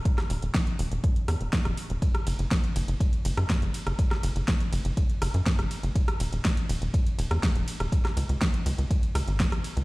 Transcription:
<<
  \new Staff \with { instrumentName = "Analog synth bass" } { \clef bass \time 4/4 \key cis \mixolydian \tempo 4 = 122 r8 e,,16 e,,16 r8 e,,16 e,,16 r8 e,16 e,,16 r16 e,,16 r16 e,,16 | r8 fis,,16 fis,,16 r8 fis,,16 fis,,16 r8 fis,,16 fis,16 r16 fis,,16 r16 fis,,16 | r8 fis,,16 fis,,16 r8 fis,,16 fis,,16 r8 fis,,16 fis,16 r16 fis,,16 r16 fis,,16 | r8 e,,16 e,,16 r8 e,,16 e,,16 r8 e,,16 e,16 r16 e,,16 r16 e,,16 |
r8 cis,16 cis,16 r8 cis,16 cis,16 r8 cis,16 gis,,8 cis,16 r16 cis,16 | }
  \new DrumStaff \with { instrumentName = "Drums" } \drummode { \time 4/4 <hh bd>16 <hh ss sn>16 hho16 hh16 <hh bd sn>16 hh16 hho16 hh16 <hh bd>16 hh16 <hho ss>16 hh16 <hh bd sn>16 <hh ss>16 hho16 hh16 | <hh bd cymr>16 <hh ss>16 <hho cymr>16 hh16 <hh bd cymr sn>16 hh16 <hho cymr>16 hh16 <hh bd cymr>16 hh16 <hho cymr>16 <hh ss>16 <hh bd cymr sn>16 hh16 <hho cymr>16 <hh ss>16 | <hh bd cymr>16 <hh ss sn>16 <hho cymr>16 hh16 <hh bd cymr sn>16 hh16 <hho cymr>16 hh16 <hh bd cymr>16 hh16 <hho cymr ss>16 hh16 <hh bd cymr sn>16 <hh ss>16 <hho cymr>16 hh16 | <hh bd cymr>16 <hh ss>16 <hho cymr>16 hh16 <hh bd cymr sn>16 hh16 <hho cymr>16 hh16 <hh bd cymr>16 hh16 <hho cymr>16 <hh ss>16 <hh bd cymr sn>16 hh16 <hho cymr>16 <hh ss>16 |
<hh bd cymr>16 <hh ss sn>16 <hho cymr>16 hh16 <hh bd cymr sn>16 hh16 <hho cymr>16 hh16 <hh bd cymr>16 hh16 <hho cymr ss>16 hh16 <hh bd cymr sn>16 <hh ss>16 <hho cymr>16 hh16 | }
>>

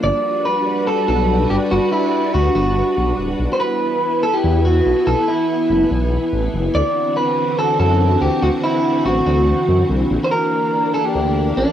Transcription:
<<
  \new Staff \with { instrumentName = "Clean electric guitar" } { \time 4/4 \key g \major \tempo 4 = 143 d''4 b'4 a'8 a'4 g'8 | fis'8 e'4 fis'8 fis'4. r8 | \tuplet 3/2 { r8 c''16 b'8.~ } b'4 a'16 g'8. fis'4 | a'8 e'4. r2 |
d''4 b'4 a'8 a'4 g'8 | fis'8 e'4 fis'8 fis'4. r8 | \tuplet 3/2 { r8 c''16 bes'8.~ } bes'4 a'16 g'4~ g'16 d'8 | }
  \new Staff \with { instrumentName = "String machine" } { \time 4/4 \key g \major << { <g fis' b'>1~ | <g fis' b'>1 | <b e'>1~ | <b e'>1 |
<d c' fis'>1~ | <d c' fis'>1 | <bes d'>1 | } \\ { d'1~ | d'1 | e1~ | e1~ |
e1~ | e1~ | e1 | } >> }
  \new Staff \with { instrumentName = "Detuned saw bass" } { \clef bass \time 4/4 \key g \major g,,8 r2 b,,4 g,,8 | g,,8 r4 d,8 g,,8 r8 b,,8 d,,8 | b,,8 r2 e,4 b,,8 | b,,8 r4 fis,,8 b,,8 r8 a,,8 fis,,8 |
d,8 r2 fis,4 d,8 | d,8 r4 a,,8 d,8 r8 fis,8 c,8 | bes,,8 r2 d,4 bes,,8 | }
>>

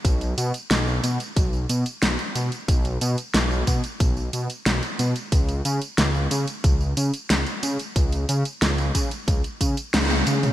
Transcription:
<<
  \new Staff \with { instrumentName = "Detuned saw bass" } { \clef bass \time 4/4 \key cis \minor \tempo 4 = 91 b,,8 b,8 b,,8 b,8 b,,8 b,8 b,,8 b,8 | b,,8 b,8 b,,8 b,8 b,,8 b,8 b,,8 b,8 | cis,8 cis8 cis,8 cis8 cis,8 cis8 cis,8 cis8 | cis,8 cis8 cis,8 cis8 cis,8 cis8 cis,8 cis8 | }
  \new DrumStaff \with { instrumentName = "Drums" } \drummode { \time 4/4 <hh bd tamb>16 <hh tamb>16 <hh tamb>16 <hh tamb>16 <hh sn tamb>16 tamb16 <hh tamb>16 <hh tamb>16 <hh bd tamb>16 tamb16 <hh tamb>16 <hh tamb>16 <hh sn tamb>16 <hh tamb>16 <hh tamb>16 <hh tamb>16 | <hh bd tamb>16 <hh tamb>16 <hh tamb>16 <hh tamb>16 <hh sn tamb>16 tamb16 <hh bd tamb>16 <hh tamb>16 <hh bd tamb>16 tamb16 <hh tamb>16 <hh tamb>16 <hh sn tamb>16 <hh tamb>16 <hh tamb>16 <hh tamb>16 | <hh bd tamb>16 <hh tamb>16 <hh tamb>16 <hh tamb>16 <hh sn tamb>16 tamb16 <hh tamb>16 <hh tamb>16 <hh bd tamb>16 tamb16 <hh tamb>16 <hh tamb>16 <hh sn tamb>16 <hh tamb>16 <hh tamb>16 <hh tamb>16 | <hh bd tamb>16 <hh tamb>16 <hh tamb>16 <hh tamb>16 <hh sn tamb>16 <hh tamb>16 <hh bd tamb>16 <hh tamb>16 <hh bd tamb>16 <hh tamb>16 <hh bd tamb>16 <hh tamb>16 <hh sn tamb tommh>16 <hh tamb tommh>16 <hh tamb>16 <hh tamb toml>16 | }
>>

